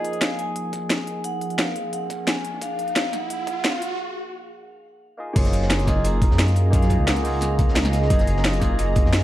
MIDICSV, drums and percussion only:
0, 0, Header, 1, 2, 480
1, 0, Start_track
1, 0, Key_signature, -6, "major"
1, 0, Tempo, 342857
1, 1746, Time_signature, 4, 2, 24, 8
1, 12929, End_track
2, 0, Start_track
2, 0, Title_t, "Drums"
2, 63, Note_on_c, 9, 42, 63
2, 184, Note_off_c, 9, 42, 0
2, 184, Note_on_c, 9, 42, 35
2, 301, Note_off_c, 9, 42, 0
2, 301, Note_on_c, 9, 38, 119
2, 301, Note_on_c, 9, 42, 90
2, 441, Note_off_c, 9, 38, 0
2, 441, Note_off_c, 9, 42, 0
2, 544, Note_on_c, 9, 42, 66
2, 684, Note_off_c, 9, 42, 0
2, 781, Note_on_c, 9, 42, 92
2, 921, Note_off_c, 9, 42, 0
2, 1022, Note_on_c, 9, 36, 101
2, 1022, Note_on_c, 9, 42, 62
2, 1162, Note_off_c, 9, 36, 0
2, 1162, Note_off_c, 9, 42, 0
2, 1261, Note_on_c, 9, 38, 113
2, 1261, Note_on_c, 9, 42, 91
2, 1386, Note_on_c, 9, 36, 57
2, 1401, Note_off_c, 9, 38, 0
2, 1401, Note_off_c, 9, 42, 0
2, 1501, Note_on_c, 9, 42, 65
2, 1526, Note_off_c, 9, 36, 0
2, 1641, Note_off_c, 9, 42, 0
2, 1739, Note_on_c, 9, 42, 92
2, 1879, Note_off_c, 9, 42, 0
2, 1979, Note_on_c, 9, 42, 63
2, 2104, Note_off_c, 9, 42, 0
2, 2104, Note_on_c, 9, 42, 36
2, 2220, Note_off_c, 9, 42, 0
2, 2220, Note_on_c, 9, 38, 120
2, 2220, Note_on_c, 9, 42, 87
2, 2360, Note_off_c, 9, 38, 0
2, 2360, Note_off_c, 9, 42, 0
2, 2460, Note_on_c, 9, 42, 66
2, 2600, Note_off_c, 9, 42, 0
2, 2701, Note_on_c, 9, 42, 93
2, 2841, Note_off_c, 9, 42, 0
2, 2941, Note_on_c, 9, 36, 104
2, 2944, Note_on_c, 9, 42, 64
2, 3081, Note_off_c, 9, 36, 0
2, 3084, Note_off_c, 9, 42, 0
2, 3184, Note_on_c, 9, 38, 119
2, 3184, Note_on_c, 9, 42, 87
2, 3306, Note_on_c, 9, 36, 65
2, 3324, Note_off_c, 9, 38, 0
2, 3324, Note_off_c, 9, 42, 0
2, 3423, Note_on_c, 9, 42, 67
2, 3446, Note_off_c, 9, 36, 0
2, 3563, Note_off_c, 9, 42, 0
2, 3661, Note_on_c, 9, 36, 126
2, 3664, Note_on_c, 9, 42, 89
2, 3801, Note_off_c, 9, 36, 0
2, 3804, Note_off_c, 9, 42, 0
2, 3904, Note_on_c, 9, 42, 61
2, 4028, Note_off_c, 9, 42, 0
2, 4028, Note_on_c, 9, 42, 35
2, 4143, Note_off_c, 9, 42, 0
2, 4143, Note_on_c, 9, 38, 121
2, 4143, Note_on_c, 9, 42, 89
2, 4283, Note_off_c, 9, 38, 0
2, 4283, Note_off_c, 9, 42, 0
2, 4383, Note_on_c, 9, 40, 33
2, 4383, Note_on_c, 9, 42, 64
2, 4523, Note_off_c, 9, 40, 0
2, 4523, Note_off_c, 9, 42, 0
2, 4623, Note_on_c, 9, 42, 92
2, 4763, Note_off_c, 9, 42, 0
2, 4861, Note_on_c, 9, 36, 112
2, 4862, Note_on_c, 9, 42, 61
2, 5001, Note_off_c, 9, 36, 0
2, 5002, Note_off_c, 9, 42, 0
2, 5102, Note_on_c, 9, 38, 121
2, 5102, Note_on_c, 9, 42, 90
2, 5225, Note_on_c, 9, 36, 64
2, 5242, Note_off_c, 9, 38, 0
2, 5242, Note_off_c, 9, 42, 0
2, 5346, Note_on_c, 9, 42, 66
2, 5365, Note_off_c, 9, 36, 0
2, 5486, Note_off_c, 9, 42, 0
2, 7503, Note_on_c, 9, 36, 125
2, 7504, Note_on_c, 9, 42, 97
2, 7504, Note_on_c, 9, 49, 108
2, 7624, Note_on_c, 9, 38, 60
2, 7629, Note_off_c, 9, 42, 0
2, 7629, Note_on_c, 9, 42, 38
2, 7643, Note_off_c, 9, 36, 0
2, 7644, Note_off_c, 9, 49, 0
2, 7744, Note_off_c, 9, 42, 0
2, 7744, Note_on_c, 9, 42, 69
2, 7745, Note_off_c, 9, 42, 0
2, 7745, Note_on_c, 9, 42, 75
2, 7764, Note_off_c, 9, 38, 0
2, 7865, Note_on_c, 9, 38, 57
2, 7885, Note_off_c, 9, 42, 0
2, 7977, Note_on_c, 9, 42, 85
2, 7983, Note_off_c, 9, 38, 0
2, 7983, Note_on_c, 9, 38, 109
2, 7985, Note_off_c, 9, 38, 0
2, 7985, Note_off_c, 9, 42, 0
2, 7985, Note_on_c, 9, 38, 114
2, 7985, Note_on_c, 9, 42, 97
2, 8111, Note_off_c, 9, 42, 0
2, 8111, Note_on_c, 9, 42, 38
2, 8125, Note_off_c, 9, 38, 0
2, 8220, Note_off_c, 9, 42, 0
2, 8220, Note_on_c, 9, 42, 63
2, 8224, Note_on_c, 9, 36, 62
2, 8227, Note_off_c, 9, 42, 0
2, 8227, Note_on_c, 9, 40, 36
2, 8227, Note_on_c, 9, 42, 71
2, 8364, Note_off_c, 9, 36, 0
2, 8367, Note_off_c, 9, 40, 0
2, 8367, Note_off_c, 9, 42, 0
2, 8461, Note_on_c, 9, 42, 89
2, 8466, Note_off_c, 9, 42, 0
2, 8466, Note_on_c, 9, 42, 101
2, 8606, Note_off_c, 9, 42, 0
2, 8704, Note_on_c, 9, 36, 104
2, 8706, Note_on_c, 9, 42, 67
2, 8708, Note_off_c, 9, 42, 0
2, 8708, Note_on_c, 9, 42, 60
2, 8831, Note_on_c, 9, 38, 53
2, 8844, Note_off_c, 9, 36, 0
2, 8848, Note_off_c, 9, 42, 0
2, 8943, Note_off_c, 9, 38, 0
2, 8943, Note_on_c, 9, 38, 96
2, 8946, Note_off_c, 9, 38, 0
2, 8946, Note_on_c, 9, 38, 121
2, 8946, Note_on_c, 9, 42, 95
2, 8951, Note_off_c, 9, 42, 0
2, 8951, Note_on_c, 9, 42, 75
2, 9071, Note_off_c, 9, 42, 0
2, 9071, Note_on_c, 9, 42, 39
2, 9086, Note_off_c, 9, 38, 0
2, 9179, Note_off_c, 9, 42, 0
2, 9179, Note_on_c, 9, 42, 62
2, 9188, Note_off_c, 9, 42, 0
2, 9188, Note_on_c, 9, 42, 72
2, 9328, Note_off_c, 9, 42, 0
2, 9424, Note_on_c, 9, 36, 127
2, 9425, Note_on_c, 9, 42, 97
2, 9431, Note_off_c, 9, 42, 0
2, 9431, Note_on_c, 9, 42, 83
2, 9547, Note_on_c, 9, 38, 39
2, 9553, Note_off_c, 9, 42, 0
2, 9553, Note_on_c, 9, 42, 37
2, 9564, Note_off_c, 9, 36, 0
2, 9656, Note_off_c, 9, 42, 0
2, 9656, Note_on_c, 9, 42, 71
2, 9664, Note_on_c, 9, 36, 62
2, 9666, Note_off_c, 9, 42, 0
2, 9666, Note_on_c, 9, 42, 65
2, 9687, Note_off_c, 9, 38, 0
2, 9804, Note_off_c, 9, 36, 0
2, 9806, Note_off_c, 9, 42, 0
2, 9900, Note_on_c, 9, 38, 118
2, 9906, Note_off_c, 9, 38, 0
2, 9906, Note_on_c, 9, 38, 121
2, 9906, Note_on_c, 9, 42, 93
2, 9910, Note_off_c, 9, 42, 0
2, 9910, Note_on_c, 9, 42, 90
2, 10029, Note_off_c, 9, 42, 0
2, 10029, Note_on_c, 9, 42, 39
2, 10046, Note_off_c, 9, 38, 0
2, 10146, Note_off_c, 9, 42, 0
2, 10146, Note_on_c, 9, 42, 66
2, 10149, Note_on_c, 9, 46, 74
2, 10286, Note_off_c, 9, 42, 0
2, 10289, Note_off_c, 9, 46, 0
2, 10371, Note_on_c, 9, 42, 94
2, 10385, Note_off_c, 9, 42, 0
2, 10385, Note_on_c, 9, 40, 36
2, 10385, Note_on_c, 9, 42, 96
2, 10525, Note_off_c, 9, 40, 0
2, 10525, Note_off_c, 9, 42, 0
2, 10623, Note_on_c, 9, 42, 64
2, 10624, Note_on_c, 9, 36, 110
2, 10628, Note_off_c, 9, 42, 0
2, 10628, Note_on_c, 9, 42, 62
2, 10753, Note_on_c, 9, 38, 50
2, 10764, Note_off_c, 9, 36, 0
2, 10768, Note_off_c, 9, 42, 0
2, 10847, Note_off_c, 9, 38, 0
2, 10847, Note_on_c, 9, 38, 120
2, 10855, Note_on_c, 9, 42, 93
2, 10863, Note_off_c, 9, 38, 0
2, 10863, Note_off_c, 9, 42, 0
2, 10863, Note_on_c, 9, 38, 120
2, 10863, Note_on_c, 9, 42, 92
2, 10987, Note_off_c, 9, 38, 0
2, 10987, Note_on_c, 9, 38, 57
2, 10989, Note_off_c, 9, 42, 0
2, 10989, Note_on_c, 9, 40, 57
2, 10989, Note_on_c, 9, 42, 37
2, 11096, Note_off_c, 9, 38, 0
2, 11096, Note_on_c, 9, 38, 61
2, 11100, Note_off_c, 9, 42, 0
2, 11100, Note_on_c, 9, 42, 71
2, 11105, Note_off_c, 9, 42, 0
2, 11105, Note_on_c, 9, 42, 69
2, 11129, Note_off_c, 9, 40, 0
2, 11231, Note_off_c, 9, 38, 0
2, 11231, Note_on_c, 9, 38, 50
2, 11245, Note_off_c, 9, 42, 0
2, 11343, Note_on_c, 9, 42, 96
2, 11344, Note_on_c, 9, 36, 126
2, 11349, Note_off_c, 9, 42, 0
2, 11349, Note_on_c, 9, 42, 89
2, 11371, Note_off_c, 9, 38, 0
2, 11458, Note_on_c, 9, 38, 53
2, 11468, Note_off_c, 9, 42, 0
2, 11468, Note_on_c, 9, 42, 37
2, 11484, Note_off_c, 9, 36, 0
2, 11583, Note_off_c, 9, 42, 0
2, 11583, Note_on_c, 9, 42, 63
2, 11586, Note_off_c, 9, 42, 0
2, 11586, Note_on_c, 9, 42, 69
2, 11598, Note_off_c, 9, 38, 0
2, 11709, Note_on_c, 9, 38, 53
2, 11726, Note_off_c, 9, 42, 0
2, 11814, Note_off_c, 9, 38, 0
2, 11814, Note_on_c, 9, 38, 107
2, 11824, Note_off_c, 9, 38, 0
2, 11824, Note_on_c, 9, 38, 127
2, 11824, Note_on_c, 9, 42, 91
2, 11949, Note_off_c, 9, 42, 0
2, 11949, Note_on_c, 9, 42, 37
2, 11964, Note_off_c, 9, 38, 0
2, 12060, Note_off_c, 9, 42, 0
2, 12060, Note_on_c, 9, 42, 69
2, 12062, Note_off_c, 9, 42, 0
2, 12062, Note_on_c, 9, 40, 35
2, 12062, Note_on_c, 9, 42, 64
2, 12065, Note_on_c, 9, 36, 61
2, 12202, Note_off_c, 9, 40, 0
2, 12202, Note_off_c, 9, 42, 0
2, 12205, Note_off_c, 9, 36, 0
2, 12301, Note_on_c, 9, 42, 83
2, 12304, Note_off_c, 9, 42, 0
2, 12304, Note_on_c, 9, 42, 95
2, 12444, Note_off_c, 9, 42, 0
2, 12538, Note_on_c, 9, 42, 66
2, 12545, Note_off_c, 9, 42, 0
2, 12545, Note_on_c, 9, 36, 113
2, 12545, Note_on_c, 9, 42, 62
2, 12675, Note_on_c, 9, 38, 43
2, 12685, Note_off_c, 9, 36, 0
2, 12685, Note_off_c, 9, 42, 0
2, 12785, Note_off_c, 9, 38, 0
2, 12785, Note_on_c, 9, 38, 126
2, 12785, Note_on_c, 9, 42, 91
2, 12787, Note_off_c, 9, 38, 0
2, 12787, Note_on_c, 9, 38, 127
2, 12788, Note_off_c, 9, 42, 0
2, 12788, Note_on_c, 9, 42, 90
2, 12927, Note_off_c, 9, 38, 0
2, 12928, Note_off_c, 9, 42, 0
2, 12929, End_track
0, 0, End_of_file